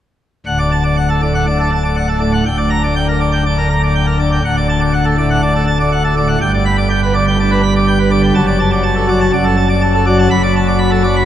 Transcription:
0.46 D1 D2 F#5
0.59 D5
0.72 A5
0.84 D5
0.97 F#5
1.09 A4
1.22 A2 D5
1.35 F#5
1.47 D4 D5
1.60 A4
1.72 A5
1.85 D5
1.97 F#5
2.09 A4
2.20 A2 D5
2.33 F#5
2.46 D1 D2 G5
2.57 D5
2.70 A#5
2.83 D5
2.96 G5
3.08 A#4
3.20 D3 D5
3.32 G5
3.46 D4 D5
3.58 A#4
3.70 A#5
3.83 D5
3.95 G5
4.06 A#4
4.19 D3 D5
4.32 G5
4.45 D1 D2 F#5
4.57 D5
4.69 A5
4.81 D5
4.93 F#5
5.05 A4
5.18 A2 D5
5.30 F#5
5.42 D4 D5
5.55 A4
5.67 A5
5.80 D5
5.92 F#5
6.04 A4
6.17 A2 D5
6.28 F#5
6.41 G1 G2 G5
6.54 D5
6.66 B5
6.78 D5
6.90 G5
7.03 B4
7.14 D3 D5
7.27 G5
7.39 D4 D5
7.51 B4
7.63 B5
7.76 D5
7.87 G5
7.99 B4
8.11 D3 D5
8.23 G5
8.35 F#1 F#2 A5
8.47 D5
8.60 A5
8.72 D5
8.83 A5
8.96 A4
9.08 F#3 D5
9.21 A5
9.33 F#1 F#2 D5
9.45 A4
9.57 A5
9.69 D5
9.81 A5
9.94 A4
10.06 F#3 D5
10.19 A5
10.31 F#1 F#2 B5
10.43 D5
10.56 A5
10.67 D5
10.79 B5
10.91 A4
11.03 F#3 D5
11.16 B5

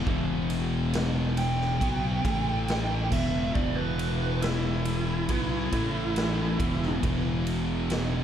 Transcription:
0.06 E1 E2 B2 E3, kick
0.50 ride
0.93 snare, ride
1.37 G5, ride
1.61 snare
1.80 B1 B2 F#3 B3, kick, ride
2.24 A1 A2 E3 A3, kick, snare, ride
2.68 snare, ride
3.11 E1 E2 B2 E3 E5, kick, crash
3.55 E1 E2 B2 E3 D5, kick
3.76 B4
3.99 ride
4.42 E4, snare, ride
4.85 ride
5.29 B1 B2 F#3 B3, kick, ride
5.72 A1 A2 E3 A3, kick, snare, ride
6.16 snare, ride
6.58 E1 E2 B2 E3, kick, ride
6.83 snare
7.02 E1 E2 B2 E3, kick, ride
7.47 ride
7.90 snare, ride

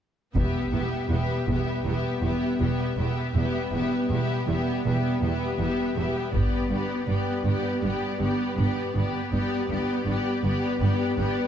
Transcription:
0.34 E1 E2 G3 B3 G4 E5, taiko
0.72 E1 E2 B3 G4 E5
1.09 E1 E2 B3 G4 E5
1.47 E1 E2 B3 G4 E5, taiko
1.85 E1 E2 B3 G4 E5
2.22 E1 E2 B3 G4 E5
2.60 E1 E2 B3 G4 E5
2.97 E1 E2 B3 G4 E5
3.33 E1 E2 G3 B3 G4 E5
3.72 E1 E2 B3 G4 E5
4.09 E1 E2 B3 G4 E5
4.48 E1 E2 B3 G4 E5
4.85 E1 E2 B3 G4 E5
5.22 E1 E2 B3 G4 E5
5.59 E1 E2 B3 G4 E5
5.95 E1 E2 G4 E5
5.99 B3
6.33 G1 G2 G3 B3 G4 D5, taiko
6.70 G1 G2 B3 G4 D5
7.08 G1 G2 B3 G4 D5
7.45 G1 G2 B3 G4 D5
7.82 G1 G2 B3 G4 D5
8.19 G1 G2 B3 G4 D5
8.57 G1 G2 B3 G4 D5
8.95 G1 G2 B3 G4 D5
9.31 G1 G2 G3 B3 G4 D5
9.69 G1 G2 B3 G4 D5
10.07 G1 G2 B3 G4 D5
10.44 G1 G2 B3 G4 D5
10.81 G1 G2 B3 G4 D5
11.18 G1 G2 B3 G4 D5

